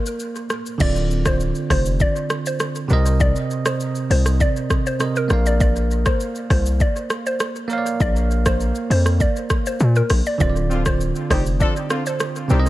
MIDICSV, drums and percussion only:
0, 0, Header, 1, 2, 480
1, 0, Start_track
1, 0, Tempo, 600000
1, 643, Time_signature, 4, 2, 24, 8
1, 10154, End_track
2, 0, Start_track
2, 0, Title_t, "Drums"
2, 50, Note_on_c, 9, 82, 98
2, 130, Note_off_c, 9, 82, 0
2, 157, Note_on_c, 9, 82, 77
2, 237, Note_off_c, 9, 82, 0
2, 285, Note_on_c, 9, 82, 57
2, 365, Note_off_c, 9, 82, 0
2, 398, Note_on_c, 9, 82, 53
2, 401, Note_on_c, 9, 37, 90
2, 478, Note_off_c, 9, 82, 0
2, 481, Note_off_c, 9, 37, 0
2, 530, Note_on_c, 9, 82, 85
2, 610, Note_off_c, 9, 82, 0
2, 641, Note_on_c, 9, 82, 82
2, 642, Note_on_c, 9, 49, 98
2, 643, Note_on_c, 9, 36, 124
2, 721, Note_off_c, 9, 82, 0
2, 722, Note_off_c, 9, 49, 0
2, 723, Note_off_c, 9, 36, 0
2, 767, Note_on_c, 9, 82, 51
2, 847, Note_off_c, 9, 82, 0
2, 886, Note_on_c, 9, 82, 56
2, 966, Note_off_c, 9, 82, 0
2, 1004, Note_on_c, 9, 37, 120
2, 1004, Note_on_c, 9, 82, 99
2, 1007, Note_on_c, 9, 36, 97
2, 1084, Note_off_c, 9, 37, 0
2, 1084, Note_off_c, 9, 82, 0
2, 1087, Note_off_c, 9, 36, 0
2, 1122, Note_on_c, 9, 82, 74
2, 1202, Note_off_c, 9, 82, 0
2, 1241, Note_on_c, 9, 82, 57
2, 1321, Note_off_c, 9, 82, 0
2, 1362, Note_on_c, 9, 36, 90
2, 1362, Note_on_c, 9, 37, 99
2, 1365, Note_on_c, 9, 46, 74
2, 1365, Note_on_c, 9, 82, 56
2, 1442, Note_off_c, 9, 36, 0
2, 1442, Note_off_c, 9, 37, 0
2, 1445, Note_off_c, 9, 46, 0
2, 1445, Note_off_c, 9, 82, 0
2, 1486, Note_on_c, 9, 82, 101
2, 1566, Note_off_c, 9, 82, 0
2, 1600, Note_on_c, 9, 82, 75
2, 1602, Note_on_c, 9, 36, 89
2, 1680, Note_off_c, 9, 82, 0
2, 1682, Note_off_c, 9, 36, 0
2, 1728, Note_on_c, 9, 82, 58
2, 1808, Note_off_c, 9, 82, 0
2, 1838, Note_on_c, 9, 82, 55
2, 1841, Note_on_c, 9, 37, 96
2, 1918, Note_off_c, 9, 82, 0
2, 1921, Note_off_c, 9, 37, 0
2, 1969, Note_on_c, 9, 82, 100
2, 2049, Note_off_c, 9, 82, 0
2, 2076, Note_on_c, 9, 82, 82
2, 2081, Note_on_c, 9, 37, 99
2, 2156, Note_off_c, 9, 82, 0
2, 2161, Note_off_c, 9, 37, 0
2, 2204, Note_on_c, 9, 82, 55
2, 2284, Note_off_c, 9, 82, 0
2, 2316, Note_on_c, 9, 82, 54
2, 2396, Note_off_c, 9, 82, 0
2, 2448, Note_on_c, 9, 82, 90
2, 2528, Note_off_c, 9, 82, 0
2, 2560, Note_on_c, 9, 82, 82
2, 2562, Note_on_c, 9, 36, 122
2, 2640, Note_off_c, 9, 82, 0
2, 2642, Note_off_c, 9, 36, 0
2, 2687, Note_on_c, 9, 82, 55
2, 2767, Note_off_c, 9, 82, 0
2, 2805, Note_on_c, 9, 82, 57
2, 2885, Note_off_c, 9, 82, 0
2, 2925, Note_on_c, 9, 37, 119
2, 2925, Note_on_c, 9, 82, 95
2, 3005, Note_off_c, 9, 37, 0
2, 3005, Note_off_c, 9, 82, 0
2, 3042, Note_on_c, 9, 82, 76
2, 3122, Note_off_c, 9, 82, 0
2, 3162, Note_on_c, 9, 82, 59
2, 3242, Note_off_c, 9, 82, 0
2, 3286, Note_on_c, 9, 46, 79
2, 3286, Note_on_c, 9, 82, 56
2, 3366, Note_off_c, 9, 46, 0
2, 3366, Note_off_c, 9, 82, 0
2, 3406, Note_on_c, 9, 37, 88
2, 3408, Note_on_c, 9, 82, 101
2, 3486, Note_off_c, 9, 37, 0
2, 3488, Note_off_c, 9, 82, 0
2, 3522, Note_on_c, 9, 82, 71
2, 3523, Note_on_c, 9, 36, 89
2, 3602, Note_off_c, 9, 82, 0
2, 3603, Note_off_c, 9, 36, 0
2, 3651, Note_on_c, 9, 82, 59
2, 3731, Note_off_c, 9, 82, 0
2, 3761, Note_on_c, 9, 82, 59
2, 3762, Note_on_c, 9, 36, 88
2, 3763, Note_on_c, 9, 37, 97
2, 3841, Note_off_c, 9, 82, 0
2, 3842, Note_off_c, 9, 36, 0
2, 3843, Note_off_c, 9, 37, 0
2, 3892, Note_on_c, 9, 82, 101
2, 3972, Note_off_c, 9, 82, 0
2, 3998, Note_on_c, 9, 82, 78
2, 4003, Note_on_c, 9, 37, 98
2, 4078, Note_off_c, 9, 82, 0
2, 4083, Note_off_c, 9, 37, 0
2, 4127, Note_on_c, 9, 82, 56
2, 4207, Note_off_c, 9, 82, 0
2, 4238, Note_on_c, 9, 82, 52
2, 4242, Note_on_c, 9, 37, 92
2, 4318, Note_off_c, 9, 82, 0
2, 4322, Note_off_c, 9, 37, 0
2, 4370, Note_on_c, 9, 82, 88
2, 4450, Note_off_c, 9, 82, 0
2, 4483, Note_on_c, 9, 36, 123
2, 4483, Note_on_c, 9, 82, 83
2, 4563, Note_off_c, 9, 36, 0
2, 4563, Note_off_c, 9, 82, 0
2, 4609, Note_on_c, 9, 82, 54
2, 4689, Note_off_c, 9, 82, 0
2, 4728, Note_on_c, 9, 82, 56
2, 4808, Note_off_c, 9, 82, 0
2, 4846, Note_on_c, 9, 37, 119
2, 4846, Note_on_c, 9, 82, 96
2, 4848, Note_on_c, 9, 36, 99
2, 4926, Note_off_c, 9, 37, 0
2, 4926, Note_off_c, 9, 82, 0
2, 4928, Note_off_c, 9, 36, 0
2, 4963, Note_on_c, 9, 82, 79
2, 5043, Note_off_c, 9, 82, 0
2, 5083, Note_on_c, 9, 82, 55
2, 5163, Note_off_c, 9, 82, 0
2, 5202, Note_on_c, 9, 37, 100
2, 5203, Note_on_c, 9, 36, 90
2, 5206, Note_on_c, 9, 46, 74
2, 5206, Note_on_c, 9, 82, 58
2, 5282, Note_off_c, 9, 37, 0
2, 5283, Note_off_c, 9, 36, 0
2, 5286, Note_off_c, 9, 46, 0
2, 5286, Note_off_c, 9, 82, 0
2, 5328, Note_on_c, 9, 82, 104
2, 5408, Note_off_c, 9, 82, 0
2, 5440, Note_on_c, 9, 82, 72
2, 5442, Note_on_c, 9, 36, 91
2, 5520, Note_off_c, 9, 82, 0
2, 5522, Note_off_c, 9, 36, 0
2, 5569, Note_on_c, 9, 82, 60
2, 5649, Note_off_c, 9, 82, 0
2, 5679, Note_on_c, 9, 82, 55
2, 5682, Note_on_c, 9, 37, 100
2, 5759, Note_off_c, 9, 82, 0
2, 5762, Note_off_c, 9, 37, 0
2, 5811, Note_on_c, 9, 82, 101
2, 5891, Note_off_c, 9, 82, 0
2, 5917, Note_on_c, 9, 82, 79
2, 5922, Note_on_c, 9, 37, 105
2, 5997, Note_off_c, 9, 82, 0
2, 6002, Note_off_c, 9, 37, 0
2, 6046, Note_on_c, 9, 82, 53
2, 6126, Note_off_c, 9, 82, 0
2, 6159, Note_on_c, 9, 82, 53
2, 6239, Note_off_c, 9, 82, 0
2, 6290, Note_on_c, 9, 82, 84
2, 6370, Note_off_c, 9, 82, 0
2, 6403, Note_on_c, 9, 36, 124
2, 6403, Note_on_c, 9, 82, 84
2, 6483, Note_off_c, 9, 36, 0
2, 6483, Note_off_c, 9, 82, 0
2, 6529, Note_on_c, 9, 82, 55
2, 6609, Note_off_c, 9, 82, 0
2, 6647, Note_on_c, 9, 82, 59
2, 6727, Note_off_c, 9, 82, 0
2, 6766, Note_on_c, 9, 82, 99
2, 6767, Note_on_c, 9, 37, 120
2, 6768, Note_on_c, 9, 36, 94
2, 6846, Note_off_c, 9, 82, 0
2, 6847, Note_off_c, 9, 37, 0
2, 6848, Note_off_c, 9, 36, 0
2, 6883, Note_on_c, 9, 82, 76
2, 6963, Note_off_c, 9, 82, 0
2, 7002, Note_on_c, 9, 82, 58
2, 7082, Note_off_c, 9, 82, 0
2, 7128, Note_on_c, 9, 46, 77
2, 7128, Note_on_c, 9, 82, 56
2, 7208, Note_off_c, 9, 46, 0
2, 7208, Note_off_c, 9, 82, 0
2, 7247, Note_on_c, 9, 37, 89
2, 7249, Note_on_c, 9, 82, 97
2, 7327, Note_off_c, 9, 37, 0
2, 7329, Note_off_c, 9, 82, 0
2, 7362, Note_on_c, 9, 36, 92
2, 7362, Note_on_c, 9, 82, 75
2, 7442, Note_off_c, 9, 36, 0
2, 7442, Note_off_c, 9, 82, 0
2, 7490, Note_on_c, 9, 82, 57
2, 7570, Note_off_c, 9, 82, 0
2, 7599, Note_on_c, 9, 82, 58
2, 7601, Note_on_c, 9, 37, 100
2, 7602, Note_on_c, 9, 36, 84
2, 7679, Note_off_c, 9, 82, 0
2, 7681, Note_off_c, 9, 37, 0
2, 7682, Note_off_c, 9, 36, 0
2, 7730, Note_on_c, 9, 82, 105
2, 7810, Note_off_c, 9, 82, 0
2, 7838, Note_on_c, 9, 82, 81
2, 7918, Note_off_c, 9, 82, 0
2, 7964, Note_on_c, 9, 82, 54
2, 8044, Note_off_c, 9, 82, 0
2, 8077, Note_on_c, 9, 46, 76
2, 8077, Note_on_c, 9, 82, 53
2, 8080, Note_on_c, 9, 37, 97
2, 8157, Note_off_c, 9, 46, 0
2, 8157, Note_off_c, 9, 82, 0
2, 8160, Note_off_c, 9, 37, 0
2, 8209, Note_on_c, 9, 82, 87
2, 8289, Note_off_c, 9, 82, 0
2, 8322, Note_on_c, 9, 82, 82
2, 8323, Note_on_c, 9, 36, 123
2, 8402, Note_off_c, 9, 82, 0
2, 8403, Note_off_c, 9, 36, 0
2, 8449, Note_on_c, 9, 82, 54
2, 8529, Note_off_c, 9, 82, 0
2, 8567, Note_on_c, 9, 82, 58
2, 8647, Note_off_c, 9, 82, 0
2, 8686, Note_on_c, 9, 82, 97
2, 8687, Note_on_c, 9, 37, 123
2, 8689, Note_on_c, 9, 36, 97
2, 8766, Note_off_c, 9, 82, 0
2, 8767, Note_off_c, 9, 37, 0
2, 8769, Note_off_c, 9, 36, 0
2, 8805, Note_on_c, 9, 82, 79
2, 8885, Note_off_c, 9, 82, 0
2, 8924, Note_on_c, 9, 82, 57
2, 9004, Note_off_c, 9, 82, 0
2, 9044, Note_on_c, 9, 36, 93
2, 9045, Note_on_c, 9, 37, 106
2, 9048, Note_on_c, 9, 46, 77
2, 9048, Note_on_c, 9, 82, 54
2, 9124, Note_off_c, 9, 36, 0
2, 9125, Note_off_c, 9, 37, 0
2, 9128, Note_off_c, 9, 46, 0
2, 9128, Note_off_c, 9, 82, 0
2, 9170, Note_on_c, 9, 82, 101
2, 9250, Note_off_c, 9, 82, 0
2, 9283, Note_on_c, 9, 36, 92
2, 9283, Note_on_c, 9, 82, 73
2, 9363, Note_off_c, 9, 36, 0
2, 9363, Note_off_c, 9, 82, 0
2, 9411, Note_on_c, 9, 82, 59
2, 9491, Note_off_c, 9, 82, 0
2, 9521, Note_on_c, 9, 82, 61
2, 9523, Note_on_c, 9, 37, 98
2, 9601, Note_off_c, 9, 82, 0
2, 9603, Note_off_c, 9, 37, 0
2, 9651, Note_on_c, 9, 82, 102
2, 9731, Note_off_c, 9, 82, 0
2, 9758, Note_on_c, 9, 82, 83
2, 9762, Note_on_c, 9, 37, 99
2, 9838, Note_off_c, 9, 82, 0
2, 9842, Note_off_c, 9, 37, 0
2, 9886, Note_on_c, 9, 82, 57
2, 9966, Note_off_c, 9, 82, 0
2, 9998, Note_on_c, 9, 82, 55
2, 10078, Note_off_c, 9, 82, 0
2, 10130, Note_on_c, 9, 82, 89
2, 10154, Note_off_c, 9, 82, 0
2, 10154, End_track
0, 0, End_of_file